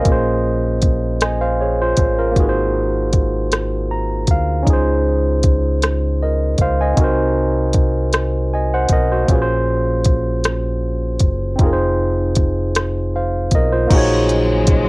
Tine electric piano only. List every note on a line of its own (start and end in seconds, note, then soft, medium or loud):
0.00 2.31 A#3 medium
0.00 0.24 A#4 medium
0.00 0.23 D#5 medium
0.04 2.32 C#4 medium
0.04 1.20 F4 medium
0.10 1.21 G#4 medium
0.10 1.22 C5 medium
1.22 1.40 D#5 soft
1.22 1.40 G#5 medium
1.41 1.59 C5 medium
1.41 1.59 F5 medium
1.61 1.79 G#4 soft
1.61 1.79 C#5 medium
1.81 2.17 F4 medium
1.81 2.17 C5 medium
2.19 2.55 F4 soft
2.19 2.54 A#4 medium
2.32 4.61 A#3 medium
2.32 4.62 D#4 medium
2.37 4.63 F#4 medium
2.37 4.65 G#4 medium
2.42 2.46 B4 medium
2.49 4.69 C5 medium
3.91 4.27 A#5 medium
4.31 4.66 F5 medium
4.63 6.92 C#4 medium
4.63 6.93 D#4 medium
4.68 6.94 F4 medium
4.68 6.95 G#4 medium
4.73 6.21 C5 medium
6.23 6.59 A#4 soft
6.23 6.58 D#5 soft
6.61 6.79 C5 medium
6.61 6.79 F5 medium
6.81 7.17 D#5 medium
6.81 7.16 G#5 medium
6.94 9.23 C4 medium
6.94 9.24 D#4 medium
6.99 8.49 F#4 medium
6.99 8.50 A#4 medium
7.04 8.52 C5 medium
8.54 8.72 D#5 soft
8.54 8.71 G#5 soft
8.74 8.91 C5 medium
8.74 8.91 F#5 medium
8.93 9.10 A#4 medium
8.93 9.10 D#5 medium
9.12 9.47 F#4 medium
9.12 9.40 C5 medium
9.25 11.53 A#3 medium
9.25 11.55 C#4 medium
9.30 11.56 F4 medium
9.30 11.57 G#4 medium
9.35 9.38 B4 medium
9.42 11.62 C5 medium
11.56 13.84 C4 medium
11.56 13.86 D#4 medium
11.62 13.11 F4 medium
11.62 13.12 G#4 medium
11.66 11.69 A#4 medium
11.73 13.15 C5 medium
13.16 13.51 C5 soft
13.16 13.51 F5 soft
13.55 13.72 A#4 medium
13.55 13.72 D#5 medium
13.72 14.09 F4 medium
13.72 14.08 C5 medium
13.87 14.89 A#3 medium
13.87 14.89 D#4 medium
13.92 14.89 F#4 medium
13.92 14.89 G#4 medium
13.98 14.89 C#5 medium